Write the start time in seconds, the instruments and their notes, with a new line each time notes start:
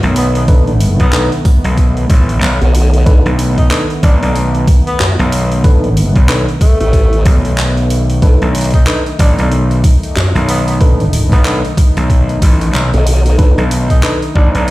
Already playing: analog synth pad D#3 A3 B3
0.03 slap bass B1, open hi-hat
0.16 tenor saxophone B3, open hi-hat
0.35 tenor saxophone B3, open hi-hat
0.48 tine electric piano D4 D#4 A4 B4, kick, open hi-hat
0.67 open hi-hat
0.80 open hi-hat
1.00 slap bass B1, tenor saxophone B3, kick, open hi-hat
1.13 tenor saxophone B3, tine electric piano D4 D#4 A4 B4, clap, open hi-hat
1.32 open hi-hat
1.45 kick, cross-stick, open hi-hat
1.64 slap bass B1, open hi-hat
1.77 kick, open hi-hat
1.97 open hi-hat
2.10 slap bass A1, kick, open hi-hat
2.29 open hi-hat
2.42 slap bass B1, clap, open hi-hat
2.61 wobble bass B1, open hi-hat
2.75 open hi-hat
2.94 open hi-hat
3.06 wobble bass B1, tine electric piano D4 D#4 A4 B4, kick, open hi-hat
3.26 slap bass B1, open hi-hat
3.39 open hi-hat
3.58 tenor saxophone D#4, kick, open hi-hat
3.71 tine electric piano D4 D#4 A4 B4, tenor saxophone D#4, clap, open hi-hat
3.90 open hi-hat
4.03 slap bass A1, tenor saxophone D4, kick, open hi-hat
4.22 slap bass B1, tenor saxophone D4, open hi-hat
4.36 open hi-hat
4.55 open hi-hat
4.68 kick, open hi-hat
4.87 tenor saxophone B3, open hi-hat
5.00 wobble bass F#2, clap, open hi-hat
5.19 slap bass B1, open hi-hat
5.32 open hi-hat
5.52 open hi-hat
5.64 tine electric piano D4 D#4 A4 B4, kick, open hi-hat
5.84 open hi-hat
5.97 open hi-hat
6.16 slap bass B1, kick, open hi-hat
6.29 tine electric piano D4 D#4 A4 B4, clap, open hi-hat
6.49 open hi-hat
6.61 tenor saxophone A3, kick, cross-stick, open hi-hat
6.80 wobble bass A1, tenor saxophone A3, open hi-hat
6.93 kick, open hi-hat
7.13 open hi-hat
7.25 slap bass B1, kick, open hi-hat
7.45 open hi-hat
7.58 clap, open hi-hat
7.77 open hi-hat
7.90 open hi-hat
8.10 open hi-hat
8.22 wobble bass B1, tine electric piano D4 D#4 A4 B4, analog synth pad D#4, kick, open hi-hat
8.42 slap bass B1, open hi-hat
8.55 open hi-hat
8.58 open hi-hat
8.61 open hi-hat
8.64 open hi-hat
8.71 tenor saxophone D#4, kick, open hi-hat
8.74 open hi-hat
8.87 tine electric piano D4 D#4 A4 B4, tenor saxophone D#4, clap, open hi-hat
9.06 open hi-hat
9.19 slap bass A1, tenor saxophone D4, kick, open hi-hat
9.38 slap bass B1, tenor saxophone D4, open hi-hat
9.52 open hi-hat
9.71 open hi-hat
9.84 kick, open hi-hat
10.03 open hi-hat
10.16 wobble bass F#2, clap, open hi-hat
10.35 slap bass B1, open hi-hat
10.48 tenor saxophone B3, open hi-hat
10.68 tenor saxophone B3, open hi-hat
10.81 tine electric piano D4 D#4 A4 B4, kick, open hi-hat
11.00 open hi-hat
11.13 open hi-hat
11.32 slap bass B1, tenor saxophone B3, kick, open hi-hat
11.45 tenor saxophone B3, tine electric piano D4 D#4 A4 B4, clap, open hi-hat
11.65 open hi-hat
11.77 kick, cross-stick, open hi-hat
11.97 slap bass B1, open hi-hat
12.10 kick, open hi-hat
12.29 open hi-hat
12.42 slap bass A1, kick, open hi-hat
12.61 open hi-hat
12.74 slap bass B1, clap, open hi-hat
12.94 wobble bass B1, open hi-hat
13.07 open hi-hat
13.26 open hi-hat
13.39 wobble bass B1, tine electric piano D4 D#4 A4 B4, kick, open hi-hat
13.58 slap bass B1, open hi-hat
13.71 open hi-hat
13.90 tenor saxophone D#4, kick, open hi-hat
14.03 tine electric piano D4 D#4 A4 B4, tenor saxophone D#4, clap, open hi-hat
14.22 open hi-hat
14.35 slap bass A1, tenor saxophone D4, kick
14.55 slap bass B1, tenor saxophone D4, open hi-hat